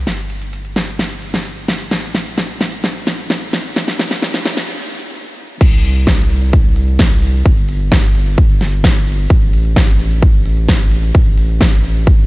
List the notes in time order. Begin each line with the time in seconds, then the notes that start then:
0.07 G1, snare, closed hi-hat
0.30 open hi-hat
0.42 closed hi-hat
0.53 closed hi-hat
0.65 closed hi-hat
0.76 snare, open hi-hat
0.88 closed hi-hat
0.99 snare, closed hi-hat
1.11 open hi-hat
1.22 open hi-hat
1.34 snare, closed hi-hat
1.45 closed hi-hat
1.57 closed hi-hat
1.68 snare, open hi-hat
1.80 closed hi-hat
1.91 A1, snare, closed hi-hat
2.15 snare, open hi-hat
2.26 closed hi-hat
2.38 snare, closed hi-hat
2.61 snare, open hi-hat
2.72 closed hi-hat
2.84 snare, closed hi-hat
3.07 snare, open hi-hat
3.19 closed hi-hat
3.30 snare, closed hi-hat
3.53 snare, open hi-hat
3.65 closed hi-hat
3.76 A1, snare, closed hi-hat
3.88 snare
3.99 snare, open hi-hat
4.11 snare, closed hi-hat
4.22 snare, closed hi-hat
4.34 snare, closed hi-hat
4.45 snare, open hi-hat
4.57 snare, closed hi-hat
5.61 C2, kick, closed hi-hat, crash
5.72 closed hi-hat
5.84 open hi-hat
5.95 closed hi-hat
6.07 kick, snare, closed hi-hat
6.19 closed hi-hat
6.30 open hi-hat
6.42 closed hi-hat
6.53 kick, closed hi-hat
6.65 closed hi-hat
6.76 open hi-hat
6.88 closed hi-hat
6.99 kick, snare, closed hi-hat
7.11 closed hi-hat
7.22 open hi-hat
7.34 closed hi-hat
7.46 G1, kick, closed hi-hat
7.57 closed hi-hat
7.69 open hi-hat
7.80 closed hi-hat
7.92 kick, snare, closed hi-hat
8.03 closed hi-hat
8.15 open hi-hat
8.27 closed hi-hat
8.38 kick, closed hi-hat
8.50 open hi-hat
8.61 snare, open hi-hat
8.73 closed hi-hat
8.84 kick, snare, closed hi-hat
8.96 closed hi-hat
9.07 open hi-hat
9.19 closed hi-hat
9.30 A1, kick, closed hi-hat
9.42 closed hi-hat
9.53 open hi-hat
9.65 closed hi-hat
9.76 kick, snare, closed hi-hat
9.88 closed hi-hat
10.00 open hi-hat
10.11 closed hi-hat
10.22 kick, closed hi-hat
10.34 closed hi-hat
10.46 open hi-hat
10.57 closed hi-hat
10.69 kick, snare, closed hi-hat
10.80 closed hi-hat
10.91 open hi-hat
11.03 closed hi-hat
11.14 A1, kick, closed hi-hat
11.26 closed hi-hat
11.38 open hi-hat
11.49 closed hi-hat
11.61 kick, snare, closed hi-hat
11.72 closed hi-hat
11.84 open hi-hat
11.95 closed hi-hat
12.07 kick, closed hi-hat
12.18 open hi-hat